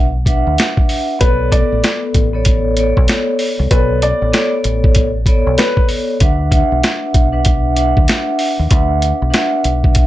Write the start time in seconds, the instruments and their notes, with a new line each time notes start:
Already playing: fingered electric bass B1
0.25 vibraphone D4 B4 E5 F#5, kick, closed hi-hat
0.47 fingered electric bass D2
0.58 snare, closed hi-hat
0.77 kick
0.89 open hi-hat
1.19 fingered electric bass B1, vibraphone B3 A4 C#5 D5, upright piano B4, kick, closed hi-hat
1.51 vibraphone B3 A4 B4 D5, upright piano D5, kick, closed hi-hat
1.72 fingered electric bass A1
1.84 snare, closed hi-hat
2.14 fingered electric bass A1, kick, closed hi-hat
2.33 vibraphone B3 A4 C#5 D5
2.45 kick, closed hi-hat
2.77 vibraphone B3 A4 C#5 D5, closed hi-hat
2.97 fingered electric bass B1, kick
3.08 snare, closed hi-hat
3.39 open hi-hat
3.59 fingered electric bass C2
3.71 fingered electric bass B1, vibraphone B3 A4 C#5 D5, upright piano B4, kick, closed hi-hat
4.02 upright piano D5, closed hi-hat
4.22 fingered electric bass A1
4.32 vibraphone B3 A4 C#5 D5, snare, closed hi-hat
4.64 fingered electric bass A1, closed hi-hat
4.84 kick
4.95 kick, closed hi-hat
5.26 vibraphone B3 A4 C#5 D5, kick, closed hi-hat
5.47 fingered electric bass B1
5.58 upright piano B4, snare, closed hi-hat
5.77 kick
5.89 open hi-hat
6.20 fingered electric bass D2, vibraphone D4 B4 E5 F#5, kick, closed hi-hat
6.51 vibraphone D4 B4 E5 F#5, kick, closed hi-hat
6.72 fingered electric bass B1
6.83 snare, closed hi-hat
7.14 fingered electric bass B1, kick, closed hi-hat
7.32 vibraphone D4 B4 E5 F#5
7.45 kick, closed hi-hat
7.76 vibraphone D4 B4 E5 F#5, closed hi-hat
7.97 fingered electric bass D2, kick
8.08 snare, closed hi-hat
8.39 open hi-hat
8.59 fingered electric bass D#2
8.70 fingered electric bass D2, vibraphone D4 B4 E5 F#5, kick, closed hi-hat
9.02 closed hi-hat
9.22 fingered electric bass B1
9.30 vibraphone D4 B4 E5 F#5, snare, closed hi-hat
9.64 fingered electric bass B1, closed hi-hat
9.84 kick
9.95 kick, closed hi-hat